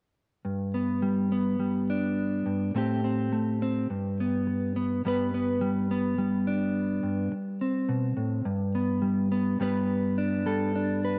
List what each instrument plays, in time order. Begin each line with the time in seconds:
0.45 clean electric guitar G2
0.74 clean electric guitar B3
1.02 clean electric guitar G3
1.32 clean electric guitar B3
1.60 clean electric guitar G3
1.90 clean electric guitar D4
2.46 clean electric guitar G2
2.75 clean electric guitar A2 A3 C4 G4, muted clean electric guitar stroke
3.04 clean electric guitar C4
3.32 clean electric guitar A3
3.62 clean electric guitar C4
3.90 clean electric guitar G2
4.20 clean electric guitar B3
4.47 muted clean electric guitar stroke
4.76 clean electric guitar B3
5.05 clean electric guitar G2 G3 B3 B4, muted clean electric guitar stroke
5.34 clean electric guitar B3
5.61 clean electric guitar G3
5.91 clean electric guitar B3
6.18 clean electric guitar G3
6.47 clean electric guitar D4
7.03 clean electric guitar G2
7.32 muted clean electric guitar stroke
7.61 clean electric guitar C4
7.89 clean electric guitar B2
8.17 clean electric guitar A2
8.45 clean electric guitar G2
8.75 clean electric guitar B3
9.02 clean electric guitar G3
9.32 clean electric guitar B3
9.60 clean electric guitar G2 G3 B3 B4, muted clean electric guitar stroke
10.18 clean electric guitar D4
10.46 clean electric guitar G3 A4
10.76 clean electric guitar D4
11.05 clean electric guitar B4